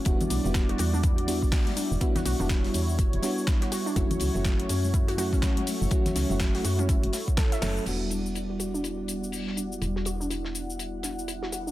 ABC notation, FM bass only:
X:1
M:4/4
L:1/16
Q:"Swing 16ths" 1/4=123
K:Edor
V:1 name="FM bass" clef=bass
E,,, z B,,, E,,,2 z E,,4- E,, E,,, z3 E,,, | z2 B,,, E,,,2 z E,,2 E,,, E,,, z6 | F,,, z C,, F,,,2 z F,,4- F,, F,,, z3 F,,, | z2 C,, F,,,2 z F,,2 F,,, F,,, z4 F,,, z |
E,,,16 | E,,,16 |]